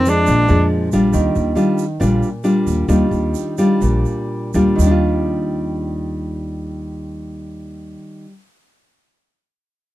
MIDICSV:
0, 0, Header, 1, 5, 480
1, 0, Start_track
1, 0, Key_signature, -3, "major"
1, 0, Tempo, 432900
1, 1256, Time_signature, 4, 2, 24, 8
1, 2705, Tempo, 458365
1, 4145, Tempo, 490597
1, 5105, Tempo, 507614
1, 9977, End_track
2, 0, Start_track
2, 0, Title_t, "Tenor saxophone"
2, 0, Program_c, 0, 66
2, 0, Note_on_c, 0, 60, 82
2, 107, Note_on_c, 0, 62, 90
2, 124, Note_off_c, 0, 60, 0
2, 801, Note_off_c, 0, 62, 0
2, 9977, End_track
3, 0, Start_track
3, 0, Title_t, "Nylon-string guitar"
3, 0, Program_c, 1, 24
3, 0, Note_on_c, 1, 41, 55
3, 73, Note_on_c, 1, 53, 58
3, 79, Note_on_c, 1, 56, 56
3, 81, Note_on_c, 1, 62, 61
3, 284, Note_off_c, 1, 41, 0
3, 300, Note_on_c, 1, 46, 48
3, 508, Note_off_c, 1, 53, 0
3, 509, Note_off_c, 1, 56, 0
3, 512, Note_off_c, 1, 62, 0
3, 534, Note_on_c, 1, 53, 58
3, 543, Note_on_c, 1, 56, 53
3, 549, Note_on_c, 1, 62, 62
3, 977, Note_off_c, 1, 53, 0
3, 981, Note_off_c, 1, 56, 0
3, 983, Note_off_c, 1, 62, 0
3, 1032, Note_on_c, 1, 55, 61
3, 1037, Note_on_c, 1, 65, 68
3, 1043, Note_on_c, 1, 62, 61
3, 1231, Note_off_c, 1, 46, 0
3, 1253, Note_on_c, 1, 51, 56
3, 1710, Note_off_c, 1, 55, 0
3, 1715, Note_off_c, 1, 62, 0
3, 1721, Note_off_c, 1, 65, 0
3, 1723, Note_on_c, 1, 55, 51
3, 1728, Note_on_c, 1, 62, 50
3, 1734, Note_on_c, 1, 65, 64
3, 2039, Note_off_c, 1, 55, 0
3, 2041, Note_off_c, 1, 62, 0
3, 2044, Note_off_c, 1, 65, 0
3, 2191, Note_off_c, 1, 51, 0
3, 2214, Note_on_c, 1, 55, 53
3, 2216, Note_on_c, 1, 46, 50
3, 2224, Note_on_c, 1, 62, 52
3, 2229, Note_on_c, 1, 65, 55
3, 2529, Note_off_c, 1, 55, 0
3, 2533, Note_off_c, 1, 62, 0
3, 2533, Note_off_c, 1, 65, 0
3, 2702, Note_on_c, 1, 55, 51
3, 2707, Note_on_c, 1, 62, 54
3, 2712, Note_on_c, 1, 65, 65
3, 3136, Note_off_c, 1, 55, 0
3, 3136, Note_off_c, 1, 62, 0
3, 3140, Note_off_c, 1, 65, 0
3, 3152, Note_off_c, 1, 46, 0
3, 3172, Note_on_c, 1, 51, 52
3, 3174, Note_on_c, 1, 55, 47
3, 3177, Note_on_c, 1, 62, 50
3, 3185, Note_on_c, 1, 65, 63
3, 3857, Note_off_c, 1, 55, 0
3, 3861, Note_off_c, 1, 62, 0
3, 3863, Note_off_c, 1, 65, 0
3, 3902, Note_on_c, 1, 55, 63
3, 3907, Note_on_c, 1, 62, 57
3, 3912, Note_on_c, 1, 65, 61
3, 4120, Note_off_c, 1, 51, 0
3, 4144, Note_on_c, 1, 46, 47
3, 4822, Note_off_c, 1, 55, 0
3, 4825, Note_off_c, 1, 62, 0
3, 4826, Note_off_c, 1, 65, 0
3, 4864, Note_on_c, 1, 55, 56
3, 4867, Note_on_c, 1, 62, 60
3, 4875, Note_on_c, 1, 65, 65
3, 5066, Note_on_c, 1, 51, 60
3, 5080, Note_off_c, 1, 46, 0
3, 5111, Note_off_c, 1, 55, 0
3, 5123, Note_on_c, 1, 55, 59
3, 5158, Note_off_c, 1, 62, 0
3, 5169, Note_on_c, 1, 62, 60
3, 5203, Note_off_c, 1, 65, 0
3, 5214, Note_on_c, 1, 65, 64
3, 8376, Note_off_c, 1, 51, 0
3, 8432, Note_off_c, 1, 55, 0
3, 8479, Note_off_c, 1, 62, 0
3, 8524, Note_off_c, 1, 65, 0
3, 9977, End_track
4, 0, Start_track
4, 0, Title_t, "Upright bass"
4, 0, Program_c, 2, 32
4, 0, Note_on_c, 2, 41, 90
4, 315, Note_on_c, 2, 34, 81
4, 332, Note_off_c, 2, 41, 0
4, 531, Note_off_c, 2, 34, 0
4, 551, Note_on_c, 2, 41, 90
4, 990, Note_off_c, 2, 41, 0
4, 1033, Note_on_c, 2, 34, 84
4, 1248, Note_off_c, 2, 34, 0
4, 1267, Note_on_c, 2, 39, 83
4, 1484, Note_off_c, 2, 39, 0
4, 1503, Note_on_c, 2, 39, 75
4, 1722, Note_off_c, 2, 39, 0
4, 2225, Note_on_c, 2, 34, 90
4, 2447, Note_off_c, 2, 34, 0
4, 2942, Note_on_c, 2, 39, 74
4, 3160, Note_off_c, 2, 39, 0
4, 3172, Note_on_c, 2, 39, 96
4, 3395, Note_off_c, 2, 39, 0
4, 3408, Note_on_c, 2, 39, 71
4, 3635, Note_off_c, 2, 39, 0
4, 4148, Note_on_c, 2, 34, 81
4, 4365, Note_off_c, 2, 34, 0
4, 4858, Note_on_c, 2, 39, 85
4, 5088, Note_off_c, 2, 39, 0
4, 5095, Note_on_c, 2, 39, 76
4, 8076, Note_off_c, 2, 39, 0
4, 9977, End_track
5, 0, Start_track
5, 0, Title_t, "Drums"
5, 61, Note_on_c, 9, 82, 62
5, 172, Note_off_c, 9, 82, 0
5, 295, Note_on_c, 9, 82, 64
5, 406, Note_off_c, 9, 82, 0
5, 535, Note_on_c, 9, 82, 26
5, 646, Note_off_c, 9, 82, 0
5, 1021, Note_on_c, 9, 82, 58
5, 1132, Note_off_c, 9, 82, 0
5, 1255, Note_on_c, 9, 82, 61
5, 1366, Note_off_c, 9, 82, 0
5, 1501, Note_on_c, 9, 82, 27
5, 1612, Note_off_c, 9, 82, 0
5, 1732, Note_on_c, 9, 82, 51
5, 1843, Note_off_c, 9, 82, 0
5, 1977, Note_on_c, 9, 82, 60
5, 2088, Note_off_c, 9, 82, 0
5, 2229, Note_on_c, 9, 82, 66
5, 2340, Note_off_c, 9, 82, 0
5, 2467, Note_on_c, 9, 82, 25
5, 2578, Note_off_c, 9, 82, 0
5, 2703, Note_on_c, 9, 82, 46
5, 2807, Note_off_c, 9, 82, 0
5, 2947, Note_on_c, 9, 82, 53
5, 3052, Note_off_c, 9, 82, 0
5, 3176, Note_on_c, 9, 82, 61
5, 3281, Note_off_c, 9, 82, 0
5, 3416, Note_on_c, 9, 82, 26
5, 3521, Note_off_c, 9, 82, 0
5, 3652, Note_on_c, 9, 82, 49
5, 3756, Note_off_c, 9, 82, 0
5, 3897, Note_on_c, 9, 82, 55
5, 4002, Note_off_c, 9, 82, 0
5, 4146, Note_on_c, 9, 82, 56
5, 4244, Note_off_c, 9, 82, 0
5, 4378, Note_on_c, 9, 82, 23
5, 4476, Note_off_c, 9, 82, 0
5, 4851, Note_on_c, 9, 82, 58
5, 4949, Note_off_c, 9, 82, 0
5, 5102, Note_on_c, 9, 82, 80
5, 5196, Note_off_c, 9, 82, 0
5, 9977, End_track
0, 0, End_of_file